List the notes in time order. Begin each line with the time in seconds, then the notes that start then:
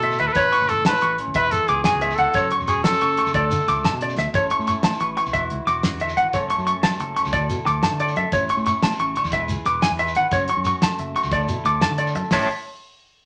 Already playing: B2 D3 A3 E4 A4
0.02 A2 E5, closed hi-hat, low agogo
0.11 shekere
0.19 D2 E4 B4 E5, closed hi-hat
0.27 A4, shekere
0.33 A1 A2 B4 C#5, kick, closed hi-hat, low agogo, shekere
0.53 C#6, closed hi-hat, low agogo
0.62 F#1, shekere
0.69 E3 A4, muted clean electric guitar stroke, closed hi-hat, shekere
0.85 A2 C#4 B4 A5, snare, closed hi-hat, low agogo
0.94 E4, shekere
1.01 A1 A2 C#6, closed hi-hat
1.18 C#4, closed hi-hat, low agogo
1.27 F#1
1.34 E1 E3 B4 E5, kick, closed hi-hat, low agogo
1.45 shekere
1.51 E2 A4, closed hi-hat, shekere
1.67 C#2 B3 G#4 D6, closed hi-hat, low agogo
1.83 F#4 G#4 G#5, snare, closed hi-hat, shekere
1.94 C#2
2.01 B2 E5, closed hi-hat, low agogo
2.10 shekere
2.15 C#2 A4 F#5, closed hi-hat
2.20 E4
2.34 F#1 F#2 C#5, kick, closed hi-hat, low agogo, shekere
2.51 C#6, closed hi-hat, low agogo
2.60 E1, shekere
2.68 F#3 G#4 C#6, closed hi-hat, shekere
2.84 F#2 C#4 A4, muted clean electric guitar stroke, snare, closed hi-hat, low agogo
2.93 shekere
3.01 F#1 C#3 C#6, closed hi-hat
3.10 shekere
3.17 A3 C#6, closed hi-hat, low agogo
3.26 F#1, shekere
3.34 D2 D3 A4 D5, kick, closed hi-hat, low agogo
3.51 D3, closed hi-hat, shekere
3.59 shekere
3.67 C#2 A3 D6, snare, closed hi-hat, low agogo
3.76 shekere
3.84 D3 A5, snare, closed hi-hat, shekere
3.93 B2
4.00 C#3 D5, closed hi-hat, low agogo, shekere
4.09 shekere
4.17 D2 B2 E5, snare
4.34 A1 C#4 E4 A4 C#5, muted clean electric guitar stroke, kick, closed hi-hat, low agogo, shekere
4.50 C#4 C#6, closed hi-hat, low agogo
4.59 A2, shekere
4.67 E4 C#6, closed hi-hat, shekere
4.83 A2 E3 A5, snare, closed hi-hat, low agogo
4.92 shekere
5.00 A1 B4 C#6, closed hi-hat
5.17 E4 C#6, closed hi-hat, low agogo
5.26 B1, shekere
5.33 E1 E3 F#4 E5, muted clean electric guitar stroke, kick, closed hi-hat, low agogo
5.50 C#2 E4, closed hi-hat
5.67 E1 F#4 D6, snare, closed hi-hat, low agogo
5.83 C#3, snare, closed hi-hat, shekere
5.92 E2
6.00 D3 E5, closed hi-hat, low agogo
6.09 shekere
6.17 G#1 E3 F#5, closed hi-hat
6.33 F#1 F#2 A3 C#4 A4 C#5, kick, closed hi-hat, low agogo, shekere
6.50 A3 C#6, closed hi-hat, low agogo
6.58 F#2, shekere
6.67 C#4 C#6, closed hi-hat
6.83 F#2 F#3 A5, snare, closed hi-hat, low agogo
6.91 shekere
6.99 F#1 A4, muted clean electric guitar stroke, closed hi-hat
7.16 C#4 C#6, closed hi-hat, low agogo
7.25 C#2, shekere
7.33 D2 D3 E4 A4 D5, kick, closed hi-hat, low agogo
7.50 B2 E4, closed hi-hat, shekere
7.66 D2 A4 D6, snare, closed hi-hat, low agogo
7.83 A3 A5, snare, closed hi-hat, shekere
7.91 D3
8.00 A4 D5, closed hi-hat, low agogo
8.08 shekere
8.16 F#2 A4 E5, closed hi-hat
8.32 A1 A2 C#4 E4 C#5, muted clean electric guitar stroke, kick, closed hi-hat, low agogo, shekere
8.49 C#4 C#6, closed hi-hat, low agogo
8.57 A2, shekere
8.66 E4 C#6, closed hi-hat, shekere
8.83 A2 B2 A5, snare, closed hi-hat, low agogo
8.91 shekere
8.99 A1 C#3 C#6, closed hi-hat
9.16 D3 C#6, closed hi-hat, low agogo
9.24 E2, shekere
9.32 E1 E3 G#4 B4 E5, kick, closed hi-hat, low agogo
9.48 C#2 G#4, closed hi-hat, shekere
9.66 E1 B4 D6, snare, closed hi-hat, low agogo
9.82 E4 G#5, snare, closed hi-hat, shekere
9.91 E2
9.99 B4 E5, closed hi-hat, low agogo
10.07 shekere
10.15 G#1 B4 F#5, closed hi-hat
10.31 F#1 F#2 C#4 F#4 C#5, kick, closed hi-hat, low agogo, shekere
10.36 muted clean electric guitar stroke
10.48 C#4 C#6, closed hi-hat, low agogo
10.57 F#2
10.64 F#4 C#6, closed hi-hat, shekere
10.82 F#2 A3 A5, snare, closed hi-hat, low agogo
10.90 shekere
10.98 F#1 E5, closed hi-hat, shekere
11.16 F#4 C#6, closed hi-hat, low agogo
11.23 C#2, shekere
11.31 D2 D3 E4 A4 D5, kick, closed hi-hat, low agogo
11.40 shekere
11.48 B2 E4, closed hi-hat, shekere
11.65 D2 A4 D6, closed hi-hat, low agogo, shekere
11.81 A3 A5, snare, closed hi-hat, shekere
11.90 D3
11.98 A4 D5, closed hi-hat, low agogo, shekere
12.07 shekere
12.15 F#2 A4, muted clean electric guitar stroke, closed hi-hat
12.23 shekere
12.31 A1 A2 E3 C#4 E4 C#5 E5 A5, snare, floor tom, open hi-hat, low agogo, shekere
12.35 A4